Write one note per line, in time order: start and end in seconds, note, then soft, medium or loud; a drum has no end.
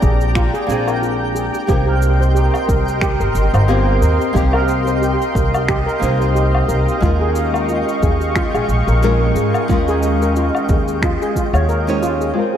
0.00 0.48 A#1 medium
0.00 1.65 G#3 medium
0.00 0.65 A#3 medium
0.00 0.65 C4 medium
0.00 0.66 D4 medium
0.00 0.67 F4 medium
0.00 12.37 G4 medium
0.00 0.67 G#4 medium
0.00 0.20 G#4 medium
0.00 1.65 D5 medium
0.00 4.32 G5 medium
0.00 12.37 G5 medium
0.00 1.65 A#5 medium
0.00 kick loud
0.00 cabasa medium
0.21 cabasa soft
0.35 0.53 F4 medium
0.35 finger snap medium
0.35 kick loud
0.35 cabasa medium
0.54 0.67 G#4 medium
0.54 cabasa soft
0.67 1.48 A#1 medium
0.67 1.64 A#3 medium
0.67 1.65 C4 medium
0.67 1.66 D4 medium
0.67 1.66 F4 medium
0.67 cabasa medium
0.71 1.67 G#4 medium
0.87 1.01 A#4 medium
0.87 cabasa medium
0.87 low woodblock medium
1.02 1.12 F4 medium
1.02 cabasa medium
1.35 1.53 G#4 medium
1.35 cabasa medium
1.54 cabasa soft
1.67 2.48 C2 medium
1.67 3.65 A#3 medium
1.67 3.65 C4 medium
1.67 3.66 D#4 medium
1.67 1.87 G4 loud
1.67 3.66 G4 medium
1.67 6.98 A#4 medium
1.67 12.31 D#5 medium
1.67 6.98 C6 medium
1.67 kick loud
1.67 cabasa medium
1.72 3.67 A#4 medium
1.87 2.01 A#4 medium
2.02 cabasa medium
2.21 2.34 C5 medium
2.21 cabasa soft
2.35 2.45 G4 medium
2.35 cabasa medium
2.54 cabasa soft
2.54 low woodblock medium
2.68 3.15 C2 medium
2.68 2.86 A#4 medium
2.68 kick loud
2.68 cabasa medium
2.88 cabasa soft
3.01 3.20 G4 medium
3.01 finger snap medium
3.01 kick loud
3.01 cabasa soft
3.20 3.32 G1 medium
3.20 3.34 A#4 medium
3.20 cabasa soft
3.35 3.50 G1 medium
3.35 cabasa medium
3.54 3.97 G1 loud
3.54 3.67 C5 medium
3.54 cabasa medium
3.54 low woodblock medium
3.68 4.32 A#3 medium
3.68 4.32 C4 medium
3.68 4.32 D#4 medium
3.68 3.79 G4 medium
3.68 4.33 G4 medium
3.68 4.33 A#4 medium
3.68 cabasa soft
4.02 4.17 D#2 medium
4.02 4.20 A#4 medium
4.02 cabasa medium
4.21 cabasa soft
4.33 5.14 C2 medium
4.33 5.97 A#3 medium
4.33 5.98 C4 medium
4.33 5.99 D#4 medium
4.33 4.53 G4 loud
4.33 5.99 G4 medium
4.33 12.31 F5 medium
4.33 kick loud
4.33 cabasa medium
4.37 6.00 A#4 medium
4.53 4.67 A#4 loud
4.53 low woodblock medium
4.68 cabasa medium
4.87 5.01 C5 medium
4.87 cabasa soft
5.02 5.12 G4 medium
5.02 cabasa medium
5.22 cabasa soft
5.35 5.81 C2 medium
5.35 5.53 A#4 medium
5.35 kick medium
5.35 cabasa medium
5.54 cabasa soft
5.54 low woodblock medium
5.68 5.87 G4 medium
5.68 finger snap medium
5.68 kick loud
5.68 cabasa soft
5.87 6.00 A#4 medium
5.87 cabasa soft
5.99 6.64 C2 medium
5.99 6.97 A#3 medium
5.99 6.98 C4 medium
5.99 6.99 D#4 medium
5.99 6.99 G4 medium
5.99 cabasa medium
6.04 7.00 A#4 medium
6.20 6.34 C5 medium
6.20 cabasa soft
6.35 6.46 G4 medium
6.35 cabasa medium
6.55 low woodblock medium
6.68 6.84 C2 medium
6.68 6.87 A#4 medium
6.68 cabasa medium
6.89 cabasa soft
7.01 7.82 D#2 medium
7.01 8.98 G#3 medium
7.01 12.31 G#3 medium
7.01 8.99 C#4 medium
7.01 8.99 D#4 medium
7.01 7.20 F4 loud
7.01 9.00 F4 medium
7.01 12.31 C#6 medium
7.01 kick loud
7.01 cabasa medium
7.05 9.00 A#4 medium
7.21 7.34 G#4 medium
7.35 cabasa medium
7.54 7.67 A#4 medium
7.54 cabasa soft
7.54 low woodblock medium
7.69 7.79 F4 medium
7.69 cabasa medium
7.89 cabasa soft
8.03 8.48 D#2 medium
8.03 8.20 G#4 medium
8.03 kick loud
8.03 cabasa medium
8.21 cabasa soft
8.36 8.54 F4 loud
8.36 finger snap medium
8.36 kick loud
8.36 cabasa soft
8.54 8.66 A#1 medium
8.54 8.68 G#4 medium
8.54 cabasa soft
8.54 low woodblock medium
8.69 8.84 A#1 medium
8.69 cabasa medium
8.88 9.31 A#1 loud
8.88 9.01 A#4 medium
8.88 cabasa soft
9.02 9.66 G#3 medium
9.02 9.66 C#4 medium
9.02 9.66 D#4 medium
9.02 9.13 F4 medium
9.02 9.66 F4 medium
9.02 9.67 A#4 loud
9.02 cabasa medium
9.35 9.50 G#2 medium
9.35 9.54 G#4 medium
9.35 cabasa medium
9.54 cabasa soft
9.54 low woodblock medium
9.68 10.48 D#2 medium
9.68 11.32 G#3 medium
9.68 11.32 C#4 medium
9.68 11.33 D#4 medium
9.68 9.87 F4 loud
9.68 11.33 F4 medium
9.68 kick loud
9.68 cabasa medium
9.73 11.34 A#4 loud
9.88 10.01 G#4 loud
9.88 cabasa soft
10.03 cabasa medium
10.22 10.35 A#4 medium
10.22 cabasa soft
10.36 10.46 F4 medium
10.36 cabasa medium
10.55 cabasa soft
10.55 low woodblock medium
10.69 11.15 D#2 loud
10.69 10.88 G#4 medium
10.69 kick loud
10.69 cabasa medium
10.88 cabasa soft
11.02 11.21 F4 loud
11.02 finger snap medium
11.02 kick loud
11.02 cabasa medium
11.22 11.35 G#4 loud
11.22 cabasa soft
11.36 11.53 F4 medium
11.36 kick medium
11.36 cabasa medium
11.53 12.30 D#2 loud
11.53 11.62 C#5 medium
11.53 cabasa medium
11.53 low woodblock medium
11.69 11.79 A#4 medium
11.69 cabasa medium
11.87 12.32 G#3 medium
11.87 12.32 C#4 medium
11.87 12.33 D#4 medium
11.87 12.33 F4 medium
11.87 12.33 C#5 medium
11.87 cabasa soft
12.03 12.20 F4 loud
12.03 cabasa medium
12.21 12.29 G#4 medium
12.21 cabasa medium
12.34 12.57 G#2 medium
12.34 12.57 F3 medium
12.34 12.57 G#3 medium
12.34 12.57 C4 medium
12.34 12.57 D#4 medium
12.34 12.53 F4 medium
12.34 12.57 F4 medium
12.34 12.57 A#4 medium
12.34 12.57 C5 medium
12.34 12.57 A#5 medium
12.38 12.57 A#4 medium
12.54 12.57 G#4 medium